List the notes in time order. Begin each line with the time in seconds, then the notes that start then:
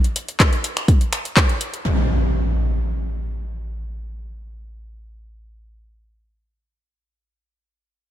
0.04 closed hi-hat
0.16 closed hi-hat
0.28 closed hi-hat
0.40 kick, clap, closed hi-hat
0.53 closed hi-hat
0.64 closed hi-hat
0.77 finger snap, closed hi-hat
0.88 kick, closed hi-hat
1.01 closed hi-hat
1.13 finger snap, closed hi-hat
1.25 closed hi-hat
1.37 kick, clap, closed hi-hat
1.49 closed hi-hat
1.61 closed hi-hat
1.74 closed hi-hat
1.85 impact